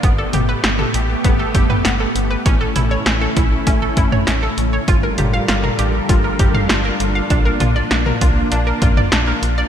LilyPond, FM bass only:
\new Staff \with { instrumentName = "FM bass" } { \clef bass \time 4/4 \key g \dorian \tempo 4 = 99 g,,8 g,,8 g,,8 a,,8 g,,8 g,,8 g,,8 g,,8 | a,,8 a,,8 a,,8 bes,,8 a,,8 a,,8 a,,8 a,,8 | g,,8 g,,8 g,,8 a,,8 g,,8 g,,8 g,,8 g,,8 | bes,,8 bes,,8 bes,,8 c,8 bes,,8 bes,,8 bes,,8 bes,,8 | }